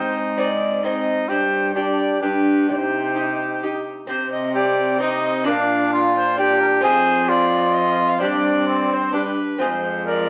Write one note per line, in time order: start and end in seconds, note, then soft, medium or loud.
0.00 1.25 G#2 medium
0.00 1.31 G#2 medium
0.00 0.54 C4 medium
0.00 0.54 D#4 medium
0.00 0.17 C5 loud
0.37 0.79 G#3 medium
0.37 0.79 C4 soft
0.37 0.79 D#4 medium
0.37 0.84 D5 medium
0.83 1.25 G#3 medium
0.83 1.29 C4 medium
0.83 1.25 C4 medium
0.83 1.30 D#4 medium
0.83 1.26 D#4 medium
0.83 1.28 D#5 medium
1.28 2.21 G2 medium
1.28 2.18 G2 medium
1.28 1.74 D4 medium
1.28 1.74 G4 medium
1.28 1.74 C5 medium
1.74 2.20 D4 medium
1.74 2.18 D4 medium
1.74 2.20 G4 medium
1.74 2.18 G4 medium
1.74 2.20 D5 medium
2.21 2.71 G2 medium
2.21 2.64 G2 soft
2.21 2.71 D4 medium
2.21 2.65 D4 soft
2.21 2.67 G4 medium
2.21 2.65 G4 soft
2.21 2.71 B4 medium
2.69 3.85 C3 soft
2.69 3.89 C3 medium
2.69 3.86 D#4 medium
2.69 3.83 G4 medium
2.69 2.76 D5 medium
2.75 3.63 C5 medium
3.16 3.58 D#4 soft
3.16 3.58 G4 soft
3.63 4.05 D#4 soft
3.63 4.05 G4 soft
4.07 5.49 C3 medium
4.07 5.43 C3 medium
4.07 4.97 C4 medium
4.07 4.98 G4 medium
4.07 4.30 C5 loud
4.31 4.54 D#5 loud
4.55 4.97 G4 medium
4.55 5.00 D5 loud
4.99 5.43 C4 medium
4.99 5.49 C4 medium
4.99 5.45 D#4 medium
4.99 5.45 G4 medium
5.03 5.47 D#5 loud
5.44 6.86 A#2 medium
5.44 6.80 A#2 medium
5.44 6.79 D4 medium
5.44 5.91 D4 medium
5.44 6.38 D4 medium
5.44 6.79 F4 medium
5.44 6.80 A#4 medium
5.44 6.15 F5 loud
5.93 6.37 F4 medium
6.16 6.39 C5 loud
6.37 6.86 D4 medium
6.37 6.83 G4 loud
6.37 6.59 D5 loud
6.60 6.66 A#4 loud
6.81 8.21 F2 medium
6.81 8.18 F2 medium
6.81 8.16 C4 medium
6.81 8.20 C4 medium
6.81 8.16 F4 medium
6.81 8.17 G#4 medium
6.81 7.31 G#4 loud
6.81 7.28 C5 loud
7.29 8.20 F4 medium
7.29 7.74 D5 loud
7.73 8.10 D#5 loud
8.09 8.19 F5 loud
8.18 9.40 G2 medium
8.18 9.37 G2 medium
8.18 9.10 C4 medium
8.18 9.16 C4 medium
8.18 9.10 D4 medium
8.18 8.66 D4 medium
8.18 9.11 G4 medium
8.18 8.89 D5 loud
8.67 9.13 C4 medium
8.89 9.12 C5 medium
8.89 8.94 D5 medium
9.12 9.37 G3 medium
9.12 9.58 D4 medium
9.12 9.24 D4 medium
9.12 9.59 G4 medium
9.12 9.61 B4 medium
9.58 10.29 F2 medium
9.58 10.29 G#3 medium
9.58 10.29 C4 medium
9.58 10.29 F4 medium
9.58 10.29 G#4 medium
9.58 10.06 C5 medium
10.06 10.29 A#4 medium
10.06 10.29 D5 loud